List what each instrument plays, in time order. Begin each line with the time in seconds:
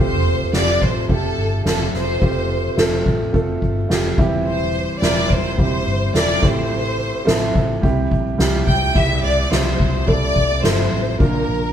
Already playing: fingered electric bass F1, upright piano A3 C4 F4 G4
0.00 violin section C5
0.52 fingered electric bass F1, upright piano A3 C4 F4 G4, violin section D5, snare
0.81 fingered electric bass A1, violin section C5, kick
1.09 fingered electric bass F1, upright piano A3 C4 F4 G4, violin section A4, kick
1.38 fingered electric bass G1
1.65 fingered electric bass F1, upright piano A3 C4 F4 A4, violin section A4, snare
1.94 fingered electric bass F1, violin section C5, snare
2.21 fingered electric bass F1, upright piano A3 C4 F4 G4, kick
2.77 fingered electric bass F1, upright piano A3 C4 F4 A4, snare
3.06 fingered electric bass A1, kick
3.33 fingered electric bass F1, upright piano A3 C4 F4 A4, kick
3.62 fingered electric bass G1, kick
3.89 fingered electric bass F1, upright piano A3 C4 F4 G4, snare
4.17 fingered electric bass E1, upright piano E3 G3 C4 E4 G4, kick
4.46 violin section C5
5.02 fingered electric bass E1, upright piano G3 C4 E4 A#4, violin section D5, snare
5.30 fingered electric bass E1, violin section C5, kick
5.57 fingered electric bass E1, upright piano G3 C4 E4 G4, violin section C5, kick
5.86 fingered electric bass G1
6.14 fingered electric bass E1, upright piano G3 C4 E4 A4, violin section D5, snare
6.42 fingered electric bass A1, upright piano A2 A3 C4 E4 G4, violin section C5, kick, snare
7.25 fingered electric bass A1, upright piano A3 C4 E4 A4, snare
7.55 fingered electric bass A1, kick
7.82 fingered electric bass C2, upright piano C3 G3 C4 E4 G4, kick
8.11 fingered electric bass A#1, kick
8.38 fingered electric bass C2, upright piano G3 C4 E4 G4, snare
8.67 fingered electric bass C2, violin section G5, kick
8.94 fingered electric bass C2, upright piano C3 G3 C4 E4 G4, violin section E5, kick, crash
9.23 fingered electric bass C2, violin section D5
9.51 fingered electric bass C2, upright piano G3 C4 E4 G4, violin section C5, snare
9.80 fingered electric bass C2, kick
10.06 fingered electric bass C2, upright piano G3 C4 E4 A4, violin section D5, kick
10.36 fingered electric bass C2, kick
10.63 fingered electric bass G1, upright piano G3 C4 E4 A4, violin section C5, snare
10.92 fingered electric bass A1
11.19 fingered electric bass A#1, upright piano A#2 A#3 D4 F4 A#4, violin section A#4, kick
11.48 fingered electric bass A#1